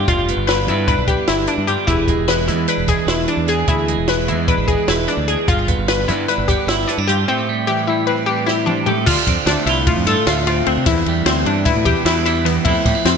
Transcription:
Already playing: clean electric guitar D3 B3 D4
0.08 fingered electric bass F1, clean electric guitar G2 F4, synth pluck F4, kick, closed hi-hat
0.28 clean electric guitar B3, closed hi-hat
0.37 fingered electric bass G1
0.47 clean electric guitar D3, synth pluck B4, snare, closed hi-hat
0.67 fingered electric bass G2, clean electric guitar B3, synth pluck E4, closed hi-hat
0.88 clean electric guitar D4, synth pluck B4, kick, closed hi-hat
0.97 fingered electric bass B1
1.08 clean electric guitar B3, synth pluck G4, kick, closed hi-hat
1.27 fingered electric bass G1, synth pluck E4, clean electric guitar E4, snare, closed hi-hat
1.47 synth pluck D4, clean electric guitar D4, closed hi-hat
1.58 fingered electric bass G2
1.67 clean electric guitar G2 F4, synth pluck G4, closed hi-hat
1.87 fingered electric bass E1, clean electric guitar E2 G#4, synth pluck E4, kick, closed hi-hat
2.08 clean electric guitar G#3, kick, closed hi-hat
2.18 fingered electric bass E1
2.28 clean electric guitar E3, synth pluck B4, snare, closed hi-hat
2.48 fingered electric bass E2, clean electric guitar G#3, synth pluck E4, snare, closed hi-hat
2.68 clean electric guitar D4, synth pluck B4, snare, closed hi-hat
2.78 fingered electric bass E1
2.88 clean electric guitar G#3, synth pluck G#4, kick, snare, closed hi-hat
3.07 fingered electric bass E1, synth pluck E4, clean electric guitar B4, snare, closed hi-hat
3.28 clean electric guitar D4, synth pluck D4, closed hi-hat
3.37 fingered electric bass E2
3.48 clean electric guitar E2 G#4, synth pluck G#4, snare, closed hi-hat
3.67 fingered electric bass D2, clean electric guitar E2 G#4, synth pluck E4, kick, closed hi-hat
3.88 clean electric guitar G#3, closed hi-hat
3.98 fingered electric bass E1
4.08 clean electric guitar E3, synth pluck B4, snare, closed hi-hat
4.28 fingered electric bass E2, clean electric guitar G#3, synth pluck E4, closed hi-hat
4.48 clean electric guitar D4, synth pluck B4, kick, closed hi-hat
4.58 fingered electric bass G#1
4.68 clean electric guitar G#3, synth pluck G#4, kick, closed hi-hat
4.88 fingered electric bass E1, synth pluck E4, clean electric guitar B4, snare, closed hi-hat
5.08 synth pluck D4, clean electric guitar D4, snare, closed hi-hat
5.17 fingered electric bass D2
5.28 clean electric guitar E2 G#4, synth pluck G#4, closed hi-hat
5.48 fingered electric bass G1, clean electric guitar G2 F4, synth pluck F4, kick, closed hi-hat
5.68 clean electric guitar B3, kick, closed hi-hat
5.78 fingered electric bass G1
5.88 clean electric guitar D3, synth pluck B4, snare, closed hi-hat
6.08 fingered electric bass G2, clean electric guitar B3, synth pluck E4, snare, closed hi-hat
6.28 clean electric guitar D4, synth pluck B4, snare, closed hi-hat
6.38 fingered electric bass G1
6.48 clean electric guitar B3, synth pluck G4, kick, snare, closed hi-hat
6.67 fingered electric bass G1, synth pluck E4, clean electric guitar E4, snare, closed hi-hat
6.88 clean electric guitar B3, synth pluck D4, snare, closed hi-hat
6.98 fingered electric bass G2, clean electric guitar D4
7.08 clean electric guitar G2 F4, synth pluck G4, closed hi-hat
7.28 clean electric guitar A2 G4, synth pluck C4
7.49 clean electric guitar G3
7.67 clean electric guitar E3, synth pluck G4
7.87 clean electric guitar G3, synth pluck E4
8.07 clean electric guitar C4, synth pluck B4
8.26 clean electric guitar G3, synth pluck G4
8.46 synth pluck E4, clean electric guitar G4, snare
8.66 clean electric guitar C4, synth pluck D4, mid tom
8.86 clean electric guitar A2 A4, synth pluck G4, floor tom
9.06 fingered electric bass D2, clean electric guitar D3, synth pluck F4, kick, crash
9.27 fingered electric bass F2, clean electric guitar C4, kick, snare, ride
9.46 fingered electric bass D2, clean electric guitar A3, synth pluck D4, snare, ride
9.66 fingered electric bass C2, synth pluck E4, clean electric guitar F4, snare, ride
9.87 clean electric guitar A2, synth pluck F4, kick, ride
9.96 fingered electric bass F2
10.07 fingered electric bass G2, clean electric guitar F4, synth pluck A4, snare, ride
10.27 fingered electric bass D2, clean electric guitar A3, synth pluck F4, snare, ride
10.47 clean electric guitar C4, synth pluck F4, ride
10.66 fingered electric bass D2, clean electric guitar D3, synth pluck C4, ride
10.77 fingered electric bass C3
10.86 fingered electric bass E2, clean electric guitar E2, synth pluck E4, kick, ride
11.06 fingered electric bass E2, clean electric guitar G3, ride
11.26 fingered electric bass D2, clean electric guitar E3, synth pluck C4, snare, ride
11.46 fingered electric bass G2, synth pluck D4, clean electric guitar D4, ride
11.65 clean electric guitar B2, synth pluck E4, kick, snare, ride
11.76 fingered electric bass A2
11.85 fingered electric bass E2, clean electric guitar D4, synth pluck G4, kick, ride
12.05 fingered electric bass E2, clean electric guitar E3, synth pluck E4, snare, ride
12.26 clean electric guitar G3, synth pluck E4, snare, ride
12.45 clean electric guitar E2, synth pluck B3, snare, ride
12.65 fingered electric bass F2, clean electric guitar F3 A3 C4, synth pluck E4, kick, ride
12.69 clean electric guitar E4
12.85 fingered electric bass A2, clean electric guitar G3, kick, snare, ride
12.95 clean electric guitar A3
13.05 fingered electric bass F2, synth pluck C4, snare, ride

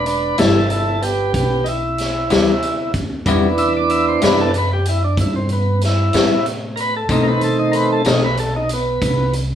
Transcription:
Already playing: upright bass E1
0.06 tonewheel organ D4 B4, closed hi-hat
0.38 upright bass G1, clean electric guitar E3 G3 B3 E4, tonewheel organ E4 A4, snare, closed hi-hat
0.70 tonewheel organ E4 A4, closed hi-hat
1.02 tonewheel organ B3 G4, closed hi-hat
1.34 upright bass B1, tonewheel organ B3 G4, kick, closed hi-hat
1.64 tonewheel organ D#4, closed hi-hat
1.68 tonewheel organ E4
1.98 snare, closed hi-hat
2.30 upright bass D2, clean electric guitar E3 G3 B3 E4, snare, closed hi-hat
2.62 closed hi-hat
2.94 kick, closed hi-hat
3.26 upright bass E2, clean electric guitar C3 G3 B3 E4, tonewheel organ E3 B3 D4, kick, closed hi-hat
3.58 tonewheel organ E5, closed hi-hat
3.77 tonewheel organ D5
3.89 tonewheel organ E5, closed hi-hat
4.08 tonewheel organ C5
4.21 upright bass F#2, clean electric guitar C3 G3 B3 E4, tonewheel organ E3 B3 D4 B4, snare, closed hi-hat
4.41 tonewheel organ A4
4.54 tonewheel organ B4, closed hi-hat
4.73 tonewheel organ G4
4.85 tonewheel organ E4, closed hi-hat
5.04 tonewheel organ D4
5.17 upright bass G2, tonewheel organ E4, kick, closed hi-hat
5.36 tonewheel organ C4
5.49 tonewheel organ B3, closed hi-hat
5.81 snare, closed hi-hat
5.85 tonewheel organ E4
6.13 upright bass A2, clean electric guitar C3 G3 B3 E4, snare, closed hi-hat
6.46 closed hi-hat
6.76 tonewheel organ A#4, closed hi-hat
6.81 tonewheel organ B4
6.96 tonewheel organ A4
7.09 upright bass B2, clean electric guitar B2 A3 C4 D#4, tonewheel organ D#3 A3 C4 D#4, kick, closed hi-hat
7.23 tonewheel organ A#4
7.28 tonewheel organ B4
7.41 tonewheel organ A4, closed hi-hat
7.59 tonewheel organ D#4
7.72 tonewheel organ A#4, closed hi-hat
7.76 tonewheel organ B4
7.92 tonewheel organ A4
8.04 upright bass B1, clean electric guitar B2 A3 C4 D#4, tonewheel organ D#4, snare, closed hi-hat
8.24 tonewheel organ B4
8.37 tonewheel organ A4, closed hi-hat
8.56 tonewheel organ D#4
8.69 closed hi-hat
8.73 tonewheel organ B3
9.02 upright bass C2, kick, closed hi-hat
9.33 closed hi-hat

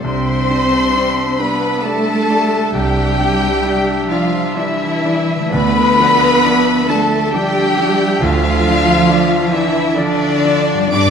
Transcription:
Already playing: harp C3 G3 D4 A4
0.00 french horn section C4, cello section C4, clarinet D4, harp D5, oboe E5, violin section C6, flute C6
0.04 grand piano C2, double bass section C2, viola section C5, violin section C5
0.50 grand piano G3 D4 D5
0.95 grand piano G3 D4 D5
1.39 grand piano G3 D4 D5, french horn section B3, cello section B3, viola section B4, violin section B4 B5, flute B5
1.83 grand piano G3 D4 D5, cello section A3, french horn section A3, viola section A4, violin section A4 A5, flute A5
2.30 grand piano G3 D4 D5
2.73 double bass section C2, grand piano C2, cello section G3, french horn section G3, viola section G4, violin section G4 G5, flute G5
3.20 grand piano G3 D4 D5
3.65 grand piano G3 D4 D5
4.09 cello section F3, french horn section F3, grand piano G3 D4 D5, viola section F4, violin section F4 F5, flute F5
4.56 cello section E3, french horn section E3, grand piano G3 D4 D5, viola section E4, violin section E4 E5, flute E5
5.05 grand piano G3 D4 D5
5.36 harp D3
5.40 harp A3
5.45 harp D4
5.49 grand piano D2, double bass section D2, timpani D3, cello section B3, clarinet D4, violin section B4 B5, viola section B4, harp D5, oboe E5, flute B5
5.53 french horn section B3
5.99 grand piano F3 D4 D5
6.45 grand piano F3 D4 D5
6.88 grand piano F3 D4 D5, cello section A3, french horn section A3, viola section A4, violin section A4 A5, flute A5
7.33 grand piano F3 D4 D5, cello section G3, french horn section G3, viola section G4, violin section G4 G5, flute G5
7.78 grand piano F3 D4 D5
8.21 grand piano D2, double bass section D2, french horn section F3, cello section F3, violin section F4 F5, viola section F4, flute F5
8.66 grand piano F3 D4 D5
9.09 grand piano F3 D4 D5
9.53 french horn section E3, cello section E3, grand piano E3 D4 D5, violin section E4 E5, viola section E4, flute E5
9.97 french horn section D3, cello section D3, grand piano F3 D4 D5, violin section D4 D5, viola section D4, flute D5
10.44 grand piano F3 D4 D5
10.74 harp G2
10.79 harp G3
10.83 harp D4
10.87 french horn section D4, clarinet D4, harp D5, violin section D5
10.92 double bass section G2, grand piano G2, cello section D4, viola section D5, oboe D5, flute D6, violin section D6

